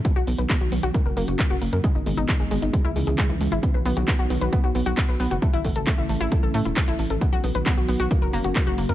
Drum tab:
HH |x-oxx-oxx-oxx-ox|x-oxx-oxx-oxx-ox|x-oxx-oxx-oxx-ox|xxoxx-oxx-oxxxox|
TB |xxxxxxxxxxxxxxxx|xxxxxxxxxxxxxxxx|xxxxxxxxxxxxxxxx|xxxxxxxxxxxxxxxx|
CP |----x-------x---|----x-------x---|----x-------x---|----x-------x---|
BD |o---o---o---o---|o---o---o---o---|o---o---o---o---|o-o-o---o---o---|

HH |x-oxx-oxx-oxx-ox|
TB |xxxxxxxxxxxxxxxx|
CP |----x-------x---|
BD |o---o---o---o---|